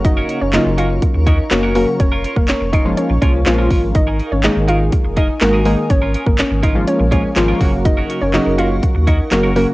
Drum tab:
HH |x-x-x-x-x-x-x-o-|x-x-x-x-x-x-x-o-|x-x-x-x-x-x-x-o-|x-x-x-x-x-x-x-o-|
CP |----x-------x---|----x-------x---|----x-------x---|----x-------x---|
SD |----o-------o---|----o-------o---|----o-------o---|----o-------o---|
BD |o-------o-o-----|o--o--o---o---o-|o-------o-o-----|o--o--o---o---o-|

HH |x-x-x-x-x-x-x-o-|
CP |----x-------x---|
SD |----o-------o---|
BD |o-------o-o-----|